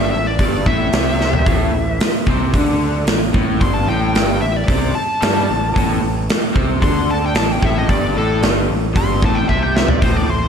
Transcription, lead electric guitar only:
0, 0, Header, 1, 2, 480
1, 0, Start_track
1, 0, Key_signature, 0, "minor"
1, 0, Tempo, 535236
1, 1319, Time_signature, 4, 2, 24, 8
1, 9399, End_track
2, 0, Start_track
2, 0, Title_t, "Lead electric guitar"
2, 0, Program_c, 0, 29
2, 0, Note_on_c, 0, 79, 93
2, 96, Note_off_c, 0, 79, 0
2, 100, Note_on_c, 0, 76, 82
2, 225, Note_off_c, 0, 76, 0
2, 243, Note_on_c, 0, 74, 80
2, 590, Note_off_c, 0, 74, 0
2, 594, Note_on_c, 0, 76, 99
2, 2001, Note_off_c, 0, 76, 0
2, 3240, Note_on_c, 0, 84, 87
2, 3350, Note_off_c, 0, 84, 0
2, 3350, Note_on_c, 0, 81, 76
2, 3471, Note_off_c, 0, 81, 0
2, 3483, Note_on_c, 0, 79, 103
2, 3948, Note_off_c, 0, 79, 0
2, 3958, Note_on_c, 0, 76, 86
2, 4094, Note_off_c, 0, 76, 0
2, 4094, Note_on_c, 0, 74, 78
2, 4437, Note_off_c, 0, 74, 0
2, 4439, Note_on_c, 0, 81, 100
2, 5844, Note_off_c, 0, 81, 0
2, 6127, Note_on_c, 0, 84, 86
2, 6357, Note_off_c, 0, 84, 0
2, 6373, Note_on_c, 0, 81, 90
2, 6484, Note_off_c, 0, 81, 0
2, 6509, Note_on_c, 0, 79, 91
2, 6602, Note_off_c, 0, 79, 0
2, 6605, Note_on_c, 0, 81, 105
2, 6741, Note_off_c, 0, 81, 0
2, 6741, Note_on_c, 0, 79, 82
2, 6848, Note_off_c, 0, 79, 0
2, 6862, Note_on_c, 0, 76, 85
2, 6968, Note_off_c, 0, 76, 0
2, 6982, Note_on_c, 0, 75, 85
2, 7077, Note_off_c, 0, 75, 0
2, 7080, Note_on_c, 0, 74, 78
2, 7313, Note_off_c, 0, 74, 0
2, 7334, Note_on_c, 0, 69, 94
2, 7560, Note_off_c, 0, 69, 0
2, 8044, Note_on_c, 0, 84, 94
2, 8275, Note_off_c, 0, 84, 0
2, 8298, Note_on_c, 0, 81, 106
2, 8384, Note_on_c, 0, 79, 94
2, 8406, Note_off_c, 0, 81, 0
2, 8506, Note_off_c, 0, 79, 0
2, 8510, Note_on_c, 0, 76, 82
2, 8633, Note_off_c, 0, 76, 0
2, 8633, Note_on_c, 0, 79, 81
2, 8752, Note_on_c, 0, 76, 84
2, 8753, Note_off_c, 0, 79, 0
2, 8879, Note_off_c, 0, 76, 0
2, 8879, Note_on_c, 0, 74, 85
2, 8989, Note_off_c, 0, 74, 0
2, 8993, Note_on_c, 0, 72, 80
2, 9115, Note_off_c, 0, 72, 0
2, 9115, Note_on_c, 0, 74, 91
2, 9238, Note_off_c, 0, 74, 0
2, 9238, Note_on_c, 0, 72, 89
2, 9399, Note_off_c, 0, 72, 0
2, 9399, End_track
0, 0, End_of_file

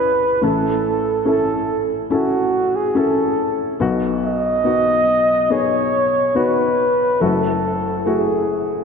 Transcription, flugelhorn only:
0, 0, Header, 1, 2, 480
1, 0, Start_track
1, 0, Tempo, 849858
1, 239, Time_signature, 4, 2, 24, 8
1, 4993, End_track
2, 0, Start_track
2, 0, Title_t, "Flugelhorn"
2, 0, Program_c, 0, 56
2, 0, Note_on_c, 0, 71, 71
2, 249, Note_on_c, 0, 69, 69
2, 257, Note_off_c, 0, 71, 0
2, 721, Note_off_c, 0, 69, 0
2, 727, Note_on_c, 0, 69, 61
2, 1026, Note_off_c, 0, 69, 0
2, 1201, Note_on_c, 0, 66, 63
2, 1557, Note_on_c, 0, 68, 57
2, 1565, Note_off_c, 0, 66, 0
2, 1679, Note_on_c, 0, 69, 64
2, 1687, Note_off_c, 0, 68, 0
2, 2036, Note_off_c, 0, 69, 0
2, 2398, Note_on_c, 0, 75, 91
2, 3115, Note_on_c, 0, 73, 83
2, 3124, Note_off_c, 0, 75, 0
2, 3593, Note_on_c, 0, 71, 74
2, 3601, Note_off_c, 0, 73, 0
2, 4075, Note_on_c, 0, 69, 70
2, 4084, Note_off_c, 0, 71, 0
2, 4553, Note_on_c, 0, 68, 64
2, 4562, Note_off_c, 0, 69, 0
2, 4886, Note_off_c, 0, 68, 0
2, 4993, End_track
0, 0, End_of_file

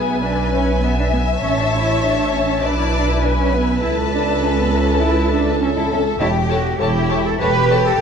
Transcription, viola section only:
0, 0, Header, 1, 2, 480
1, 0, Start_track
1, 0, Key_signature, 3, "major"
1, 0, Tempo, 596421
1, 1159, Time_signature, 4, 2, 24, 8
1, 6447, End_track
2, 0, Start_track
2, 0, Title_t, "Viola section"
2, 0, Program_c, 0, 48
2, 0, Note_on_c, 0, 71, 46
2, 68, Note_on_c, 0, 76, 39
2, 181, Note_off_c, 0, 76, 0
2, 191, Note_on_c, 0, 76, 42
2, 299, Note_off_c, 0, 76, 0
2, 308, Note_on_c, 0, 76, 44
2, 421, Note_off_c, 0, 76, 0
2, 431, Note_on_c, 0, 76, 46
2, 536, Note_off_c, 0, 76, 0
2, 546, Note_on_c, 0, 76, 40
2, 662, Note_off_c, 0, 76, 0
2, 672, Note_on_c, 0, 76, 42
2, 777, Note_off_c, 0, 76, 0
2, 787, Note_on_c, 0, 76, 42
2, 902, Note_off_c, 0, 76, 0
2, 912, Note_on_c, 0, 76, 43
2, 1017, Note_off_c, 0, 76, 0
2, 1027, Note_on_c, 0, 76, 43
2, 1122, Note_off_c, 0, 71, 0
2, 1134, Note_off_c, 0, 76, 0
2, 1144, Note_on_c, 0, 73, 52
2, 1144, Note_on_c, 0, 76, 50
2, 1258, Note_off_c, 0, 76, 0
2, 1268, Note_on_c, 0, 76, 44
2, 1376, Note_off_c, 0, 76, 0
2, 1385, Note_on_c, 0, 76, 42
2, 1499, Note_off_c, 0, 76, 0
2, 1508, Note_on_c, 0, 76, 41
2, 1614, Note_off_c, 0, 76, 0
2, 1624, Note_on_c, 0, 76, 45
2, 1730, Note_off_c, 0, 76, 0
2, 1740, Note_on_c, 0, 76, 48
2, 1861, Note_off_c, 0, 76, 0
2, 1871, Note_on_c, 0, 76, 45
2, 1989, Note_off_c, 0, 76, 0
2, 1999, Note_on_c, 0, 76, 42
2, 2095, Note_off_c, 0, 73, 0
2, 2105, Note_off_c, 0, 76, 0
2, 2114, Note_on_c, 0, 71, 54
2, 2114, Note_on_c, 0, 76, 47
2, 2226, Note_off_c, 0, 76, 0
2, 2236, Note_on_c, 0, 76, 45
2, 2343, Note_off_c, 0, 76, 0
2, 2353, Note_on_c, 0, 76, 43
2, 2467, Note_off_c, 0, 76, 0
2, 2477, Note_on_c, 0, 76, 45
2, 2591, Note_off_c, 0, 76, 0
2, 2600, Note_on_c, 0, 76, 48
2, 2712, Note_off_c, 0, 76, 0
2, 2722, Note_on_c, 0, 76, 49
2, 2838, Note_off_c, 0, 76, 0
2, 2847, Note_on_c, 0, 76, 47
2, 2957, Note_off_c, 0, 76, 0
2, 2967, Note_on_c, 0, 76, 46
2, 3070, Note_off_c, 0, 76, 0
2, 3079, Note_on_c, 0, 76, 54
2, 3080, Note_on_c, 0, 69, 53
2, 3083, Note_off_c, 0, 71, 0
2, 3193, Note_off_c, 0, 76, 0
2, 3202, Note_on_c, 0, 76, 47
2, 3313, Note_off_c, 0, 76, 0
2, 3323, Note_on_c, 0, 76, 51
2, 3444, Note_off_c, 0, 76, 0
2, 3455, Note_on_c, 0, 76, 48
2, 3559, Note_off_c, 0, 76, 0
2, 3569, Note_on_c, 0, 76, 47
2, 3678, Note_off_c, 0, 76, 0
2, 3687, Note_on_c, 0, 76, 48
2, 3797, Note_off_c, 0, 76, 0
2, 3807, Note_on_c, 0, 76, 51
2, 3910, Note_off_c, 0, 76, 0
2, 3920, Note_on_c, 0, 76, 46
2, 4028, Note_off_c, 0, 76, 0
2, 4038, Note_on_c, 0, 76, 49
2, 4146, Note_off_c, 0, 76, 0
2, 4156, Note_on_c, 0, 76, 52
2, 4265, Note_off_c, 0, 76, 0
2, 4275, Note_on_c, 0, 76, 57
2, 4377, Note_off_c, 0, 76, 0
2, 4387, Note_on_c, 0, 76, 52
2, 4501, Note_off_c, 0, 76, 0
2, 4511, Note_on_c, 0, 76, 56
2, 4624, Note_off_c, 0, 76, 0
2, 4634, Note_on_c, 0, 76, 52
2, 4746, Note_off_c, 0, 76, 0
2, 4756, Note_on_c, 0, 76, 49
2, 4861, Note_off_c, 0, 76, 0
2, 4870, Note_on_c, 0, 76, 55
2, 4985, Note_off_c, 0, 69, 0
2, 4992, Note_off_c, 0, 76, 0
2, 4993, Note_on_c, 0, 73, 59
2, 4994, Note_on_c, 0, 69, 56
2, 5057, Note_off_c, 0, 73, 0
2, 5059, Note_off_c, 0, 69, 0
2, 5228, Note_on_c, 0, 73, 53
2, 5234, Note_on_c, 0, 69, 54
2, 5293, Note_off_c, 0, 73, 0
2, 5298, Note_off_c, 0, 69, 0
2, 5465, Note_on_c, 0, 69, 53
2, 5469, Note_on_c, 0, 73, 54
2, 5529, Note_off_c, 0, 69, 0
2, 5533, Note_off_c, 0, 73, 0
2, 5715, Note_on_c, 0, 69, 50
2, 5715, Note_on_c, 0, 73, 56
2, 5779, Note_off_c, 0, 69, 0
2, 5779, Note_off_c, 0, 73, 0
2, 5969, Note_on_c, 0, 69, 55
2, 5969, Note_on_c, 0, 73, 55
2, 6033, Note_off_c, 0, 69, 0
2, 6033, Note_off_c, 0, 73, 0
2, 6200, Note_on_c, 0, 73, 57
2, 6202, Note_on_c, 0, 69, 59
2, 6264, Note_off_c, 0, 73, 0
2, 6267, Note_off_c, 0, 69, 0
2, 6447, End_track
0, 0, End_of_file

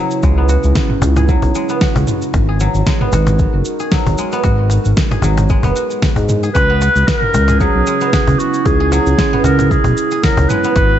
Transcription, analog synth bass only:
0, 0, Header, 1, 2, 480
1, 0, Start_track
1, 0, Tempo, 526316
1, 215, Time_signature, 4, 2, 24, 8
1, 10025, End_track
2, 0, Start_track
2, 0, Title_t, "Analog synth bass"
2, 0, Program_c, 0, 38
2, 211, Note_on_c, 0, 37, 104
2, 522, Note_off_c, 0, 37, 0
2, 587, Note_on_c, 0, 37, 91
2, 664, Note_off_c, 0, 37, 0
2, 935, Note_on_c, 0, 37, 85
2, 1244, Note_off_c, 0, 37, 0
2, 1308, Note_on_c, 0, 35, 77
2, 1384, Note_off_c, 0, 35, 0
2, 1787, Note_on_c, 0, 37, 87
2, 1864, Note_off_c, 0, 37, 0
2, 2137, Note_on_c, 0, 32, 94
2, 2445, Note_off_c, 0, 32, 0
2, 2504, Note_on_c, 0, 32, 84
2, 2582, Note_off_c, 0, 32, 0
2, 2854, Note_on_c, 0, 32, 87
2, 3164, Note_off_c, 0, 32, 0
2, 3226, Note_on_c, 0, 30, 81
2, 3303, Note_off_c, 0, 30, 0
2, 3706, Note_on_c, 0, 32, 91
2, 3783, Note_off_c, 0, 32, 0
2, 4055, Note_on_c, 0, 32, 98
2, 4364, Note_off_c, 0, 32, 0
2, 4428, Note_on_c, 0, 32, 83
2, 4504, Note_off_c, 0, 32, 0
2, 4768, Note_on_c, 0, 32, 91
2, 5081, Note_off_c, 0, 32, 0
2, 5138, Note_on_c, 0, 30, 82
2, 5219, Note_off_c, 0, 30, 0
2, 5624, Note_on_c, 0, 44, 90
2, 5923, Note_off_c, 0, 44, 0
2, 5975, Note_on_c, 0, 37, 98
2, 6284, Note_off_c, 0, 37, 0
2, 6345, Note_on_c, 0, 37, 86
2, 6422, Note_off_c, 0, 37, 0
2, 6695, Note_on_c, 0, 37, 89
2, 7004, Note_off_c, 0, 37, 0
2, 7066, Note_on_c, 0, 35, 85
2, 7143, Note_off_c, 0, 35, 0
2, 7547, Note_on_c, 0, 37, 90
2, 7623, Note_off_c, 0, 37, 0
2, 7896, Note_on_c, 0, 37, 98
2, 8205, Note_off_c, 0, 37, 0
2, 8267, Note_on_c, 0, 37, 85
2, 8343, Note_off_c, 0, 37, 0
2, 8618, Note_on_c, 0, 37, 90
2, 8926, Note_off_c, 0, 37, 0
2, 8986, Note_on_c, 0, 35, 83
2, 9063, Note_off_c, 0, 35, 0
2, 9467, Note_on_c, 0, 37, 87
2, 9543, Note_off_c, 0, 37, 0
2, 9815, Note_on_c, 0, 32, 97
2, 10025, Note_off_c, 0, 32, 0
2, 10025, End_track
0, 0, End_of_file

